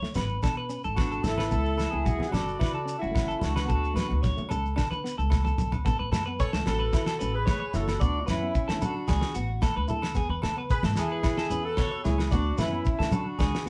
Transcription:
Already playing: clean electric guitar C#5
0.02 clean electric guitar A3, snare, high conga
0.14 upright bass G#1, clean electric guitar B3 B4, snare, low conga, low agogo, shekere
0.29 shekere
0.43 upright bass B2, clean electric guitar D4 A4, kick, snare, low agogo, shekere
0.57 clean electric guitar B4
0.69 clean electric guitar C#4, shekere
0.84 upright bass G#1, clean electric guitar A4, shekere
0.95 clean electric guitar B3, horn section D4 F#4, kick, snare, low agogo, shekere
1.11 clean electric guitar A4, shekere
1.23 upright bass G#1, horn section E4 A4, muted clean electric guitar stroke, snare, high conga, low conga, shekere
1.38 clean electric guitar B4, snare, high conga, low agogo
1.50 upright bass C#2, clean electric guitar B3 A4, kick, shekere
1.66 shekere
1.77 clean electric guitar A3 A4, snare, low agogo, shekere
1.90 upright bass C#2, clean electric guitar B3, horn section E4 G#4
2.05 clean electric guitar F#4, kick, low conga, shekere
2.19 clean electric guitar B3, snare, high conga
2.29 clean electric guitar C#4, horn section F#4 D5, low agogo
2.33 upright bass F#1, clean electric guitar A4, snare, low conga, shekere
2.48 shekere
2.59 upright bass C#3, clean electric guitar E4 B4, kick, snare, low agogo, shekere
2.74 clean electric guitar A4
2.86 clean electric guitar C#4, shekere
2.98 horn section C#4 E4, clean electric guitar F#4
3.02 upright bass F#1, shekere
3.11 clean electric guitar A3, low agogo
3.16 kick, snare, shekere
3.28 clean electric guitar A4, shekere
3.39 horn section D4 F#4, clean electric guitar E4, high conga, low conga, shekere
3.43 upright bass C#2, snare
3.56 clean electric guitar B4, snare, high conga, low agogo
3.66 clean electric guitar B3 A4, shekere
3.70 upright bass D2, kick
3.84 shekere
3.94 clean electric guitar A3 B4, snare, low conga, low agogo, shekere
4.08 upright bass D2, clean electric guitar B3, high conga
4.23 clean electric guitar C#5, kick, snare, low conga, shekere
4.37 clean electric guitar A3, high conga, shekere
4.49 upright bass C#2, clean electric guitar C#4 A4, low conga, low agogo, shekere
4.66 shekere
4.76 upright bass D3, clean electric guitar D4 A4, kick, snare, low agogo, shekere
4.91 clean electric guitar B4, high conga, shekere
5.04 clean electric guitar B3, snare, shekere
5.18 upright bass C#2, clean electric guitar A4, shekere
5.30 clean electric guitar A3, kick, snare, high conga, low agogo, shekere
5.45 clean electric guitar A4, high tom, high conga, shekere
5.58 upright bass B1, mid tom, low conga, shekere
5.72 floor tom, low conga, low agogo, shekere
5.85 upright bass A1, clean electric guitar B3 A4, kick, snare, shekere
5.99 upright bass A1, clean electric guitar B4
6.12 upright bass F#2, clean electric guitar A3 A4, snare, low conga, low agogo, shekere
6.26 clean electric guitar B3 B4
6.40 horn section A4 C#5, kick, shekere
6.53 upright bass C#2, clean electric guitar A3 A4, snare, high conga
6.66 upright bass A1, clean electric guitar C#4, horn section F#4 A4, snare, low conga, low agogo, shekere
6.79 clean electric guitar B4
6.93 clean electric guitar E4, kick, snare, high conga, low agogo, shekere
7.06 clean electric guitar A4, snare
7.19 upright bass A1, clean electric guitar C#4 B4, shekere
7.34 horn section G#4 B4
7.46 clean electric guitar A3 C#5, kick, snare, high conga, low agogo, shekere
7.60 clean electric guitar C#5
7.74 upright bass F#1, clean electric guitar E4, horn section F#4 A4, snare, low conga, shekere
7.88 snare, low agogo
8.00 upright bass D2, clean electric guitar B3 D5, horn section D4 F#4, kick, shekere
8.21 horn section F#4
8.26 upright bass F#2, clean electric guitar A3 B4, horn section C#4 E4, snare, low conga, low agogo, shekere
8.42 clean electric guitar B3
8.55 kick, shekere
8.68 upright bass D3, clean electric guitar A3 A4, snare, high conga
8.82 clean electric guitar C#4, horn section D4 F#4, low conga, low agogo, shekere
9.08 upright bass C#2, clean electric guitar D4 G#4, kick, snare, high conga, low agogo, shekere
9.21 snare
9.35 upright bass A1, clean electric guitar B3 F#4, shekere
9.62 clean electric guitar A3 A4, kick, snare, high conga, low agogo, shekere
9.77 upright bass D2, clean electric guitar B4
9.88 clean electric guitar E4 A4, low conga, shekere
10.02 snare, low agogo
10.15 upright bass E2, clean electric guitar B3 G#4, kick, snare, shekere
10.29 upright bass E2, clean electric guitar B4
10.42 upright bass C#3, clean electric guitar A3 A4, snare, low conga, low agogo
10.57 clean electric guitar B3 B4
10.70 horn section G#4 B4, kick, shekere
10.83 upright bass G#2, clean electric guitar A3 A4, snare, high conga
10.96 upright bass E2, horn section E4 G#4, snare, low agogo, shekere
11.12 clean electric guitar B4
11.23 clean electric guitar E4, kick, snare, high conga, low agogo, shekere
11.37 clean electric guitar A4, snare
11.50 upright bass E2, clean electric guitar C#4 B4, shekere
11.64 horn section F#4 A4
11.77 clean electric guitar B3 C#5, kick, snare, high conga, low agogo, shekere
11.91 clean electric guitar C#5
12.04 upright bass C#2, horn section E4 G#4, clean electric guitar E4, snare, low conga, shekere
12.18 snare, low agogo
12.31 upright bass D2, clean electric guitar B3 D5, horn section D4 F#4, kick, snare, shekere
12.58 upright bass F#2, clean electric guitar A3 B4, horn section C#4 E4, snare, high conga, low conga, low agogo, shekere
12.73 clean electric guitar B3
12.85 kick, shekere
12.99 upright bass D3, clean electric guitar A3 A4, snare, high conga
13.11 clean electric guitar C#4, horn section D4 F#4, low conga, low agogo, shekere
13.39 upright bass C#2, clean electric guitar D4 G#4, kick, snare, high conga, low agogo, shekere
13.55 snare
13.66 clean electric guitar B3 F#4

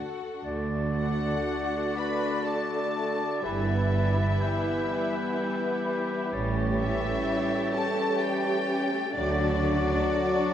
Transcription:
Already playing: violin section F#4 A4 F#5
0.45 cello section D2, double bass section D2, bassoon D3, violin section A3 D4, french horn section A3 D4, clarinet F#4, cor anglais D5, flute A6
0.70 violin section A3
0.96 violin section A3 F#5, viola section F#4
1.21 violin section A3
1.46 violin section A3
1.71 violin section A3
1.96 violin section A3 B5, viola section B4
2.20 violin section A3
2.44 violin section A3 A5, viola section A4
2.68 violin section A3
2.93 violin section A3
3.19 violin section A3
3.43 double bass section G1, cello section G2, bassoon E3, violin section G3 E4 E5, french horn section G3 B3, viola section E4, clarinet G4, cor anglais B4
3.68 violin section B3
3.92 violin section G3
4.18 violin section B3
4.41 violin section G3, flute G6
4.65 violin section B3
4.90 violin section G3
5.14 violin section B3
5.37 violin section G3
5.61 violin section B3
5.84 violin section G3
6.09 violin section B3
6.33 double bass section A1, cello section A2, violin section G3 G4, french horn section C#4, cor anglais C#5, flute A6
6.57 violin section A3
6.79 violin section C#4 E5, viola section E4
7.02 violin section A3
7.26 violin section G3
7.49 violin section A3
7.72 violin section C#4 A5, viola section A4
7.96 violin section A3
8.20 violin section G3 G5, viola section G4
8.44 violin section A3
8.67 violin section C#4
8.91 violin section A3
9.15 double bass section D2, cello section D3, french horn section F#3 D4, bassoon F#3, violin section A3 F#4 D5, viola section D4, clarinet F#4, cor anglais D5
9.39 violin section D4
9.62 violin section A3
9.87 violin section D4
10.11 violin section A3
10.34 violin section D4

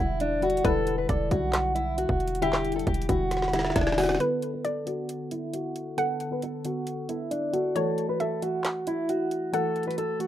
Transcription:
Already playing: 808-style bass E1, synth keys D3 G3
0.00 steel-string acoustic guitar E4, synth keys E4
0.20 steel-string acoustic guitar D4, closed hi-hat
0.41 synth keys D3 G3 E4, steel-string acoustic guitar F#4, closed hi-hat
0.50 closed hi-hat
0.57 closed hi-hat
0.64 808-style bass E1, synth keys D3 G3 E4, steel-string acoustic guitar A4, synth pluck B4, kick, closed hi-hat
0.87 closed hi-hat
0.98 steel-string acoustic guitar B4
1.09 808-style bass E1, steel-string acoustic guitar A4, synth pluck D5, kick, closed hi-hat
1.30 808-style bass B1, synth keys D3 G3 E4, steel-string acoustic guitar F#4, kick, closed hi-hat
1.53 snare, clap, closed hi-hat
1.75 steel-string acoustic guitar E4, closed hi-hat
1.98 steel-string acoustic guitar F#4, closed hi-hat
2.09 808-style bass E1, kick
2.20 closed hi-hat
2.28 closed hi-hat
2.35 closed hi-hat
2.41 synth keys D3 G3 E4, steel-string acoustic guitar G4, synth pluck E5, closed hi-hat
2.53 cross-stick, snare, clap
2.65 closed hi-hat
2.72 synth keys D3, steel-string acoustic guitar A4, closed hi-hat
2.76 synth keys G3 E4, closed hi-hat
2.87 808-style bass E1, steel-string acoustic guitar G4, kick, closed hi-hat
2.94 closed hi-hat
3.02 closed hi-hat
3.08 808-style bass E1, synth keys D3 G3 E4, steel-string acoustic guitar F#4, kick, closed hi-hat
3.31 snare, closed hi-hat
3.37 snare
3.42 snare
3.48 snare
3.52 synth keys D3 G3 G4, steel-string acoustic guitar E4, snare, closed hi-hat
3.59 snare
3.65 snare
3.70 snare
3.75 808-style bass E1, steel-string acoustic guitar D4, kick, snare, closed hi-hat
3.81 snare
3.87 snare
3.92 snare
3.97 synth keys D3 G3 E4, steel-string acoustic guitar F#4, snare, open hi-hat
4.04 snare
4.09 snare
4.15 snare
4.20 synth keys D3 B3 A4, synth pluck B4, closed hi-hat
4.42 closed hi-hat
4.54 steel-string acoustic guitar B4
4.65 steel-string acoustic guitar A4, synth pluck D5, closed hi-hat
4.85 synth keys D3 B3 A4, steel-string acoustic guitar F#4, closed hi-hat
5.09 closed hi-hat
5.31 steel-string acoustic guitar E4, closed hi-hat
5.53 steel-string acoustic guitar F#4, closed hi-hat
5.76 closed hi-hat
5.97 synth keys D3 B3 A4, steel-string acoustic guitar A4, synth pluck F#5, closed hi-hat
6.20 closed hi-hat
6.30 synth keys D3 B3 A4, steel-string acoustic guitar B4
6.42 steel-string acoustic guitar A4, closed hi-hat
6.64 synth keys D3 B3 A4, steel-string acoustic guitar F#4, closed hi-hat
6.87 closed hi-hat
7.09 synth keys D3 B3 A4, steel-string acoustic guitar E4, closed hi-hat
7.31 steel-string acoustic guitar D4, closed hi-hat
7.53 synth keys D3 B3 A4, steel-string acoustic guitar F#4, closed hi-hat
7.75 synth keys E3 A3 F#4, steel-string acoustic guitar A4, synth pluck C#5, closed hi-hat
7.98 closed hi-hat
8.09 steel-string acoustic guitar B4
8.20 steel-string acoustic guitar A4, synth pluck E5, closed hi-hat
8.42 synth keys E3 A3 F#4, steel-string acoustic guitar F#4, closed hi-hat
8.64 snare, clap, closed hi-hat
8.87 steel-string acoustic guitar E4, closed hi-hat
9.09 steel-string acoustic guitar F#4, closed hi-hat
9.31 closed hi-hat
9.52 synth keys E3 A3 F#4, steel-string acoustic guitar A4, synth pluck F#5, closed hi-hat
9.76 closed hi-hat
9.83 synth keys E3 A3, closed hi-hat
9.87 synth keys F#4, steel-string acoustic guitar B4, closed hi-hat
9.98 steel-string acoustic guitar A4, closed hi-hat
10.19 synth keys E3 A3 F#4, steel-string acoustic guitar F#4, closed hi-hat

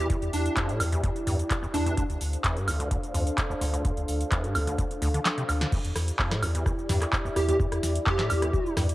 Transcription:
Already playing: analog synth pad E4 G4 D5
0.10 acid bass E2, kick, closed hi-hat, cabasa
0.22 sub bass E2, closed hi-hat, cabasa
0.33 sub bass E2, digital synth lead D4, open hi-hat, cabasa
0.46 closed hi-hat, cabasa
0.57 acid bass F2, kick, clap, closed hi-hat, cabasa
0.69 acid bass A2, closed hi-hat, cabasa
0.80 sub bass E2, acid bass E2, open hi-hat, cabasa, high woodblock
0.92 acid bass E2, closed hi-hat, cabasa
1.03 acid bass E2, kick, closed hi-hat, cabasa
1.16 closed hi-hat, cabasa
1.27 sub bass E2, acid bass G2, open hi-hat, cabasa
1.39 closed hi-hat, cabasa
1.50 kick, clap, closed hi-hat, cabasa
1.63 acid bass E2, cabasa
1.74 sub bass E2, acid bass E2, digital synth lead D4, open hi-hat, cabasa
1.86 acid bass E2, closed hi-hat, cabasa
1.97 acid bass D2, analog synth pad D4 A4 C5 F5, kick, closed hi-hat, cabasa
2.09 sub bass D2, closed hi-hat, cabasa
2.21 sub bass D2, open hi-hat, cabasa
2.33 closed hi-hat, cabasa
2.44 acid bass E2, kick, clap, closed hi-hat, cabasa
2.56 acid bass G2, closed hi-hat, cabasa
2.67 acid bass D2, sub bass D2, open hi-hat, cabasa, high woodblock
2.80 acid bass D2, closed hi-hat, cabasa
2.91 acid bass D2, kick, closed hi-hat, cabasa
3.03 closed hi-hat, cabasa
3.14 sub bass D2, acid bass F2, open hi-hat, cabasa
3.27 closed hi-hat, cabasa
3.38 kick, clap, closed hi-hat, cabasa
3.50 acid bass D2, cabasa
3.61 acid bass D2, sub bass D2, open hi-hat, cabasa
3.73 acid bass D2, closed hi-hat, cabasa
3.85 acid bass D2, kick, closed hi-hat, cabasa
3.97 sub bass D2, closed hi-hat, cabasa
4.08 sub bass D2, open hi-hat, cabasa
4.21 closed hi-hat, cabasa
4.31 acid bass E2, kick, clap, closed hi-hat, cabasa
4.44 acid bass G2, closed hi-hat, cabasa
4.55 acid bass D2, sub bass D2, open hi-hat, cabasa, high woodblock
4.67 acid bass D2, closed hi-hat, cabasa
4.78 acid bass D2, kick, closed hi-hat, cabasa
4.91 closed hi-hat, cabasa
5.02 acid bass D2, sub bass D2, open hi-hat, cabasa
5.14 acid bass D3, closed hi-hat, cabasa
5.25 snare, clap, closed hi-hat, cabasa
5.38 acid bass C3, closed hi-hat, cabasa
5.49 acid bass D2, sub bass D2, open hi-hat, cabasa, high woodblock
5.61 acid bass D3, snare, closed hi-hat, cabasa
5.72 acid bass E2, analog synth pad E4 G4 D5, kick, crash, cabasa
5.85 sub bass E2, closed hi-hat, cabasa
5.96 sub bass E2, cross-stick, snare, open hi-hat, cabasa
6.08 closed hi-hat, cabasa
6.19 acid bass F2, kick, clap, cabasa
6.31 acid bass A2, cross-stick, snare, closed hi-hat, cabasa
6.42 sub bass E2, acid bass E2, open hi-hat, cabasa, high woodblock
6.55 acid bass E2, closed hi-hat, cabasa
6.66 acid bass E2, kick, cross-stick, cabasa
6.79 cabasa
6.89 sub bass E2, acid bass G2, snare, open hi-hat, cabasa
7.02 cross-stick, clap, closed hi-hat, cabasa
7.13 kick, clap, cabasa
7.25 acid bass E2, cabasa
7.36 acid bass E2, sub bass E2, digital synth lead G4, cross-stick, open hi-hat, cabasa
7.49 acid bass E2, digital synth lead G4, closed hi-hat, cabasa
7.60 acid bass E2, kick, cabasa
7.72 sub bass E2, cross-stick, closed hi-hat, cabasa
7.83 sub bass E2, snare, open hi-hat, cabasa
7.95 closed hi-hat, cabasa
8.06 acid bass F2, digital synth lead G4, kick, cross-stick, clap, cabasa
8.19 acid bass A2, snare, clap, closed hi-hat, cabasa
8.30 acid bass E2, sub bass E2, open hi-hat, cabasa, high woodblock
8.42 acid bass E2, cross-stick, closed hi-hat, cabasa
8.53 acid bass E2, kick, cabasa
8.66 cabasa
8.77 sub bass E2, acid bass G2, cross-stick, snare, open hi-hat, cabasa
8.89 closed hi-hat, cabasa

